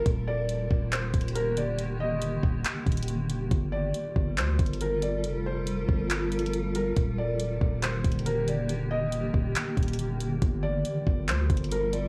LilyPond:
<<
  \new Staff \with { instrumentName = "Felt piano" } { \time 4/4 \key ees \lydian \tempo 4 = 139 r8 d''4. c''4 bes'8 d''8 | r8 ees''4. r2 | r8 d''4. c''4 bes'8 d''8 | r8 c''4. r4. bes'8 |
r8 d''4. c''4 bes'8 d''8 | r8 ees''4. r2 | r8 d''4. c''4 bes'8 d''8 | }
  \new Staff \with { instrumentName = "Ambient pad" } { \time 4/4 \key ees \lydian <d ees bes g'>1~ | <d ees bes g'>1 | <g f' a' bes'>1~ | <g f' a' bes'>1 |
<d ees bes g'>1~ | <d ees bes g'>1 | <g f' a' bes'>1 | }
  \new Staff \with { instrumentName = "808-style bass" } { \clef bass \time 4/4 \key ees \lydian ees,,4. ees,,4 ees,,4.~ | ees,,4. ees,,8 r8 ees,,4. | g,,4 r8 g,,8 d,8 g,,4. | f,,4. g,,2~ g,,8 |
ees,,4. ees,,4 ees,,4.~ | ees,,4. ees,,8 r8 ees,,4. | g,,4 r8 g,,8 d,8 g,,4. | }
  \new DrumStaff \with { instrumentName = "Drums" } \drummode { \time 4/4 <hh bd>4 hh8 bd8 \tuplet 3/2 { <hc hh>16 r16 r16 <hh bd>16 hh16 hh16 } hh8 hh8 | hh4 hh8 bd8 <hc hh>8 <hh bd>32 hh32 hh32 hh32 hh8 hh8 | <hh bd>4 hh8 bd8 \tuplet 3/2 { <hc hh>16 r16 r16 <hh bd>16 hh16 hh16 } hh8 hh8 | hh4 hh8 bd8 \tuplet 3/2 { <hc hh>16 r16 r16 hh16 hh16 hh16 } hh8 hh8 |
<hh bd>4 hh8 bd8 \tuplet 3/2 { <hc hh>16 r16 r16 <hh bd>16 hh16 hh16 } hh8 hh8 | hh4 hh8 bd8 <hc hh>8 <hh bd>32 hh32 hh32 hh32 hh8 hh8 | <hh bd>4 hh8 bd8 \tuplet 3/2 { <hc hh>16 r16 r16 <hh bd>16 hh16 hh16 } hh8 hh8 | }
>>